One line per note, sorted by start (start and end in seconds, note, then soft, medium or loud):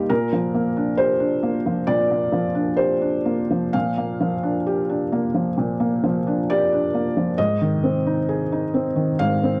0.00 0.12 G2 soft
0.00 0.12 G3 soft
0.00 0.12 A#3 soft
0.00 0.12 D#4 soft
0.00 0.13 F4 soft
0.00 0.10 G4 medium
0.10 1.83 A#2 medium
0.10 0.98 A#4 medium
0.33 0.68 F3 soft
0.55 0.90 A#3 soft
0.77 1.12 D4 soft
0.97 1.34 G4 soft
0.97 1.87 C5 medium
1.20 1.56 D4 soft
1.43 1.78 A#3 soft
1.66 2.01 F3 soft
1.87 3.70 A#2 medium
1.87 2.77 D5 medium
2.11 2.46 A#3 soft
2.32 2.68 F3 soft
2.55 2.91 D4 soft
2.77 3.15 G4 soft
2.77 3.74 C5 medium
3.01 3.40 D4 soft
3.25 3.65 A#3 soft
3.51 3.89 F3 soft
3.73 5.54 A#2 medium
3.73 6.03 F5 medium
3.98 4.34 A#3 soft
4.20 4.57 F3 soft
4.43 4.80 D4 soft
4.67 5.03 G4 soft
4.90 5.26 D4 soft
5.12 5.49 A#3 soft
5.34 5.72 F3 soft
5.58 7.33 A#2 medium
5.80 6.17 A#3 soft
6.04 6.40 F3 soft
6.27 6.62 D4 soft
6.50 6.85 G4 medium
6.50 7.38 D5 medium
6.73 7.07 D4 soft
6.94 7.29 A#3 soft
7.17 7.38 F3 soft
7.38 9.15 G#2 medium
7.38 9.18 D#5 medium
7.61 7.96 D#3 soft
7.84 8.19 C4 soft
8.07 8.41 D#4 soft
8.29 8.64 G#4 soft
8.52 8.87 D#4 soft
8.74 9.10 C4 soft
8.96 9.32 D#3 soft
9.19 9.60 G#2 soft
9.19 9.60 F5 medium
9.43 9.60 C4 soft